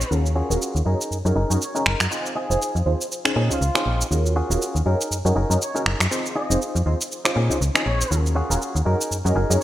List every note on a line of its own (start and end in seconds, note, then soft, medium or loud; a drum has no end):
0.00 0.17 C#5 medium
0.00 shaker medium
0.11 0.42 D#2 medium
0.11 0.47 C#4 medium
0.11 0.47 F4 medium
0.11 0.47 F#4 medium
0.11 0.47 G#4 medium
0.11 0.47 A#4 medium
0.11 shaker medium
0.26 shaker soft
0.36 0.80 C#4 loud
0.36 0.81 F4 medium
0.36 0.81 F#4 medium
0.36 0.81 G#4 loud
0.50 0.57 D#1 medium
0.50 0.59 C#4 loud
0.50 0.59 F4 medium
0.50 0.59 F#4 medium
0.50 0.59 G#4 medium
0.50 0.60 A#4 loud
0.50 shaker medium
0.62 shaker soft
0.75 0.82 D#2 medium
0.75 shaker soft
0.86 0.95 F#2 medium
0.86 0.98 C#4 medium
0.86 1.17 D#4 medium
0.86 0.98 D#4 medium
0.86 0.98 F#4 medium
0.86 1.17 G#4 medium
0.86 0.98 G#4 medium
0.86 1.17 A#4 medium
0.86 0.98 A#4 medium
1.01 shaker medium
1.11 1.22 F#2 soft
1.11 shaker soft
1.25 1.32 F#2 loud
1.25 1.41 C#4 medium
1.25 1.41 D#4 medium
1.25 1.41 F#4 medium
1.25 1.41 G#4 medium
1.25 1.41 A#4 loud
1.25 muted clean electric guitar stroke medium
1.25 shaker soft
1.36 1.45 F#1 medium
1.36 1.55 D#4 medium
1.36 1.56 G#4 medium
1.36 1.56 A#4 loud
1.50 1.57 F#2 medium
1.50 1.59 C#4 medium
1.50 1.59 D#4 medium
1.50 1.59 F#4 medium
1.50 1.59 G#4 medium
1.50 1.59 A#4 loud
1.50 shaker medium
1.61 1.78 C#5 medium
1.61 shaker soft
1.75 1.84 C#4 medium
1.75 2.06 D#4 medium
1.75 1.84 D#4 medium
1.75 1.84 F#4 medium
1.75 1.84 G#4 medium
1.75 2.06 G#4 medium
1.75 2.06 A#4 medium
1.75 1.85 A#4 loud
1.75 shaker soft
1.86 1.95 F#1 medium
1.86 2.03 A#4 medium
1.86 finger snap medium
2.00 2.07 F#2 medium
2.00 finger snap medium
2.00 shaker medium
2.11 2.47 C4 medium
2.11 2.47 D#4 medium
2.11 2.47 F4 medium
2.11 2.47 G#4 medium
2.11 2.47 C5 medium
2.11 shaker medium
2.26 shaker soft
2.36 2.81 D#4 loud
2.36 2.81 F4 medium
2.36 2.75 G#4 medium
2.36 2.81 G#4 loud
2.50 2.57 F1 medium
2.50 2.59 C4 medium
2.50 2.59 D#4 medium
2.50 2.59 F4 medium
2.50 2.59 G#4 medium
2.50 2.60 C5 loud
2.50 shaker medium
2.62 shaker medium
2.75 2.82 F2 medium
2.75 shaker soft
2.86 2.95 D#2 medium
2.86 2.98 C4 medium
2.86 2.98 D#4 medium
2.86 2.98 F4 medium
2.86 2.98 G#4 medium
2.86 2.98 C5 medium
3.01 shaker medium
3.12 shaker medium
3.25 3.41 C#4 medium
3.25 3.41 D#4 medium
3.25 3.41 F4 medium
3.25 3.41 G#4 medium
3.25 3.41 C5 loud
3.25 finger snap medium
3.25 muted clean electric guitar stroke medium
3.25 shaker soft
3.36 3.50 A#2 medium
3.36 3.56 C4 medium
3.36 3.56 C#4 medium
3.36 3.56 D#4 medium
3.36 3.56 G#4 loud
3.50 3.59 C#2 soft
3.50 3.59 C#4 medium
3.50 3.59 D#4 medium
3.50 3.59 F4 medium
3.50 4.00 F4 medium
3.50 3.59 G#4 medium
3.50 3.60 C5 loud
3.50 shaker medium
3.61 3.70 C#2 medium
3.61 shaker medium
3.75 4.06 C4 medium
3.75 3.84 C#4 medium
3.75 4.06 C#4 medium
3.75 3.84 D#4 medium
3.75 4.06 D#4 medium
3.75 3.84 F4 medium
3.75 3.84 G#4 medium
3.75 4.06 G#4 medium
3.75 3.84 C5 loud
3.75 finger snap medium
3.75 shaker soft
3.86 4.03 A#1 medium
4.01 shaker medium
4.11 4.42 D#2 medium
4.11 4.47 C#4 medium
4.11 4.47 F4 medium
4.11 4.47 F#4 medium
4.11 4.47 G#4 medium
4.11 4.47 A#4 medium
4.11 shaker medium
4.26 shaker soft
4.36 4.81 C#4 loud
4.36 4.81 F4 medium
4.36 4.81 F#4 loud
4.36 4.81 G#4 loud
4.50 4.57 D#1 medium
4.50 4.59 C#4 medium
4.50 4.59 F4 medium
4.50 4.59 F#4 medium
4.50 4.60 G#4 medium
4.50 4.60 A#4 loud
4.50 shaker medium
4.62 shaker medium
4.75 4.82 D#2 medium
4.75 shaker soft
4.86 4.95 F#2 medium
4.86 4.98 C#4 medium
4.86 5.17 D#4 medium
4.86 4.98 D#4 medium
4.86 4.98 F#4 medium
4.86 5.17 G#4 medium
4.86 4.98 G#4 medium
4.86 4.98 A#4 medium
4.86 5.17 A#4 medium
5.01 shaker medium
5.11 5.22 F#2 soft
5.11 shaker medium
5.25 5.32 F#2 loud
5.25 5.41 C#4 medium
5.25 5.41 D#4 medium
5.25 5.41 F#4 medium
5.25 5.41 G#4 medium
5.25 5.41 A#4 loud
5.25 muted clean electric guitar stroke medium
5.25 shaker soft
5.36 5.45 F#1 medium
5.36 5.56 D#4 loud
5.36 5.56 G#4 medium
5.36 5.56 A#4 loud
5.50 5.57 F#2 medium
5.50 5.59 C#4 medium
5.50 5.59 D#4 medium
5.50 5.59 F#4 medium
5.50 5.59 G#4 medium
5.50 5.59 A#4 loud
5.50 shaker medium
5.61 5.78 C#5 medium
5.61 shaker soft
5.75 5.84 C#4 medium
5.75 6.05 D#4 medium
5.75 5.84 D#4 medium
5.75 5.84 F#4 medium
5.75 5.84 G#4 medium
5.75 6.06 G#4 medium
5.75 5.84 A#4 medium
5.75 6.06 A#4 medium
5.75 shaker soft
5.86 5.95 F#1 medium
5.86 finger snap medium
6.00 6.07 F#2 medium
6.00 finger snap medium
6.00 shaker medium
6.11 6.47 C4 medium
6.11 6.47 D#4 medium
6.11 6.47 F4 medium
6.11 6.47 G#4 medium
6.11 6.47 C5 medium
6.11 shaker medium
6.26 shaker soft
6.36 6.80 D#4 loud
6.36 6.81 F4 medium
6.36 6.81 G#4 loud
6.36 6.53 D#5 medium
6.50 6.57 F1 medium
6.50 6.59 C4 loud
6.50 6.59 D#4 medium
6.50 6.59 F4 medium
6.50 6.59 G#4 medium
6.50 6.60 C5 loud
6.50 shaker medium
6.62 shaker medium
6.75 6.82 F2 medium
6.75 shaker soft
6.86 6.95 D#2 medium
6.86 6.98 C4 medium
6.86 6.98 D#4 medium
6.86 6.98 F4 medium
6.86 6.98 G#4 medium
6.86 6.98 C5 medium
7.01 shaker medium
7.12 shaker medium
7.25 7.41 C#4 medium
7.25 7.41 D#4 medium
7.25 7.41 F4 medium
7.25 7.41 G#4 medium
7.25 7.41 C5 loud
7.25 finger snap medium
7.25 muted clean electric guitar stroke medium
7.25 shaker soft
7.36 7.50 A#2 medium
7.36 7.55 C4 loud
7.36 7.56 C#4 medium
7.36 7.56 D#4 medium
7.36 7.56 G#4 loud
7.50 7.59 C#2 soft
7.50 7.59 C#4 medium
7.50 7.59 D#4 medium
7.50 7.59 F4 medium
7.50 7.59 G#4 medium
7.50 7.59 C5 medium
7.50 shaker medium
7.61 7.70 C#2 medium
7.61 shaker medium
7.75 8.06 C4 medium
7.75 7.84 C#4 medium
7.75 8.06 C#4 medium
7.75 7.84 D#4 medium
7.75 8.06 D#4 medium
7.75 7.84 F4 medium
7.75 7.84 G#4 medium
7.75 8.06 G#4 medium
7.75 7.84 C5 loud
7.75 finger snap medium
7.75 shaker soft
7.86 8.04 A#1 medium
7.86 8.17 C#5 medium
8.01 shaker medium
8.11 8.42 D#2 medium
8.11 8.47 C#4 medium
8.11 8.47 F4 medium
8.11 8.47 F#4 medium
8.11 8.47 G#4 medium
8.11 8.47 A#4 medium
8.11 shaker medium
8.26 shaker soft
8.35 8.80 C#4 loud
8.35 8.81 F4 medium
8.35 8.81 F#4 medium
8.35 8.81 G#4 loud
8.50 8.57 D#1 medium
8.50 8.59 C#4 medium
8.50 8.59 F4 medium
8.50 8.59 F#4 medium
8.50 8.59 G#4 medium
8.50 8.59 A#4 loud
8.50 shaker medium
8.62 shaker medium
8.75 8.82 D#2 medium
8.75 shaker soft
8.85 8.95 F#2 medium
8.85 8.98 C#4 medium
8.85 9.16 D#4 medium
8.85 8.98 D#4 medium
8.85 8.98 F#4 medium
8.85 9.17 G#4 medium
8.85 8.98 G#4 medium
8.85 9.17 A#4 loud
8.85 8.98 A#4 medium
9.01 shaker medium
9.11 9.22 F#2 soft
9.11 shaker medium
9.25 9.32 F#2 loud
9.25 9.41 C#4 medium
9.25 9.41 D#4 medium
9.25 9.41 F#4 medium
9.25 9.41 G#4 medium
9.25 9.41 A#4 loud
9.25 muted clean electric guitar stroke medium
9.25 shaker soft
9.35 9.45 F#1 medium
9.35 9.55 D#4 loud
9.35 9.56 G#4 loud
9.35 9.56 A#4 loud
9.50 9.57 F#2 medium
9.50 9.59 C#4 medium
9.50 9.59 D#4 medium
9.50 9.59 F#4 medium
9.50 9.59 G#4 medium
9.50 9.60 A#4 loud
9.50 shaker medium